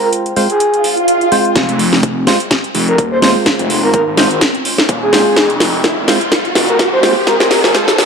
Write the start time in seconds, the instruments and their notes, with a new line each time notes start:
Already playing: synth stab G#3 C4 F4 C5, ambient pad F4 C5 G5
0.02 soft synth lead A#4
0.13 closed hi-hat
0.26 closed hi-hat
0.36 synth stab G#3 C4 F4 C5, open hi-hat
0.50 soft synth lead G#4, closed hi-hat
0.60 closed hi-hat, swell
0.74 closed hi-hat
0.84 open hi-hat
0.97 closed hi-hat
1.08 closed hi-hat
1.21 closed hi-hat
1.32 synth stab G#3 C4 F4 C5, open hi-hat
1.45 closed hi-hat
1.55 detuned saw bass F1, kick, snare, closed hi-hat, riser
1.69 closed hi-hat
1.79 open hi-hat
1.93 snare
2.03 detuned saw bass F1, kick, closed hi-hat
2.27 synth stab G#3 C4 F4 C5, snare, open hi-hat
2.40 closed hi-hat
2.51 kick, snare, closed hi-hat
2.64 closed hi-hat
2.75 detuned saw bass F1, open hi-hat
2.88 soft synth lead A#4, closed hi-hat
2.98 detuned saw bass D#1, kick, closed hi-hat
3.12 soft synth lead C5
3.22 synth stab G#3 C4 F4 C5, soft synth lead C5, snare, open hi-hat
3.46 kick, snare, closed hi-hat
3.59 detuned saw bass F1, closed hi-hat
3.70 open hi-hat
3.83 detuned saw bass G#1, soft synth lead A#4
3.93 soft synth lead A#4, kick, closed hi-hat
4.07 detuned saw bass G#1
4.17 synth stab G#3 C4 F4 C5, snare, open hi-hat
4.31 closed hi-hat
4.41 kick, snare, closed hi-hat
4.55 closed hi-hat
4.65 open hi-hat
4.78 snare, closed hi-hat
4.89 detuned saw bass D#1, kick, closed hi-hat
5.02 soft synth lead G#4
5.13 synth stab G#3 C4 F4 C5, snare, open hi-hat
5.36 detuned saw bass F1, kick, snare, closed hi-hat
5.50 closed hi-hat
5.60 snare, open hi-hat
5.84 detuned saw bass F1, kick, snare, closed hi-hat
6.08 synth stab G#3 C4 F4 C5, snare, open hi-hat
6.21 closed hi-hat
6.32 kick, snare, closed hi-hat
6.45 closed hi-hat
6.55 detuned saw bass F1, snare, open hi-hat
6.69 soft synth lead A#4, closed hi-hat
6.79 detuned saw bass D#1, kick, snare, closed hi-hat
6.93 soft synth lead C5
7.03 synth stab G#3 C4 F4 C5, soft synth lead C5, snare, open hi-hat
7.27 synth stab G#3 C4 F4 C5, soft synth lead A#4, kick, snare, closed hi-hat
7.40 detuned saw bass F1, soft synth lead A#4, snare, closed hi-hat
7.51 soft synth lead A#4, snare, open hi-hat
7.64 detuned saw bass G#1, soft synth lead A#4, snare
7.75 synth stab G#3 C4 F4 C5, kick, snare, closed hi-hat
7.88 detuned saw bass G#1, snare, closed hi-hat
7.98 snare, open hi-hat